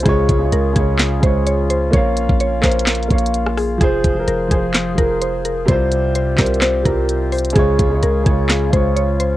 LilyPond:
<<
  \new Staff \with { instrumentName = "Synth pluck" } { \time 4/4 \key des \lydian \tempo 4 = 128 aes'4 bes'8 aes'4 c''8 des''8 c''8 | des''4 des''8 c''8 bes'4. aes'8 | aes'4 bes'8 aes'4 bes'8 c''8 bes'8 | c''4 c''8 bes'8 c''8 bes'4 c''8 |
aes'4 bes'8 aes'4 c''8 des''8 c''8 | }
  \new Staff \with { instrumentName = "Grand piano" } { \time 4/4 \key des \lydian <des aes f' des''>8 r16 <des aes f' des''>8 r16 <des aes f' des''>8. r16 <des aes f' des''>4~ <des aes f' des''>16 r16 | <bes bes' des'' f''>4~ <bes bes' des'' f''>16 r16 <bes bes' des'' f''>8. r16 <bes bes' des'' f''>4~ <bes bes' des'' f''>16 r16 | <f f' aes' c''>8 r16 <f f' aes' bes'>8 r16 <f f' aes' c''>8. r16 <f f' aes' bes'>4~ <f f' aes' bes'>16 r16 | <c g f' c''>4~ <c g f' c''>16 r16 <c g f' c''>8. r16 <c g f' bes'>4~ <c g f' bes'>16 r16 |
<des aes f' des''>8 r16 <des aes f' des''>8 r16 <des aes f' des''>8. r16 <des aes f' des''>4~ <des aes f' des''>16 r16 | }
  \new Staff \with { instrumentName = "Woodwind section" } { \time 4/4 \key des \lydian << { <des des' f' aes'>1 | bes1 | <f c''>1 | <c c' g'>1 |
<des des' aes'>1 | } \\ { r1 | r1 | aes'1 | f'1~ |
f'1 | } >> }
  \new Staff \with { instrumentName = "808-style bass" } { \clef bass \time 4/4 \key des \lydian des,8 des,8 des,8 des,4 des,4. | bes,,8. bes,,8. bes,,4 bes,,4. | f,,8 f,,8 f,,8 f,,4 f,,4. | c,4. c,4 c,4. |
des,8 des,8 des,8 des,4 des,4. | }
  \new DrumStaff \with { instrumentName = "Drums" } \drummode { \time 4/4 <hh bd>8 <hh bd>8 hh8 <hh bd>8 <hc hh sn>8 <hh bd>8 hh8 hh8 | <hh bd>8 hh16 bd16 \tuplet 3/2 { hh16 r16 r16 <hc hh hho bd sn>16 hh16 hh16 <hc hh sn>16 hh16 hh16 <hh bd>16 hh16 hh16 } hh16 ss16 <hho ss>8 | <hh bd>8 <hh bd>8 hh8 <hh bd>8 <hc hh sn>8 <hh bd>8 hh8 hh8 | <hh bd>8 hh8 \tuplet 3/2 { hh16 r16 r16 <hc hh hho bd sn>16 hh16 hh16 } <hc hh sn>8 <hh bd>8 hh8 <hh hho>32 hh32 hh32 hh32 |
<hh bd>8 <hh bd>8 hh8 <hh bd>8 <hc hh sn>8 <hh bd>8 hh8 hh8 | }
>>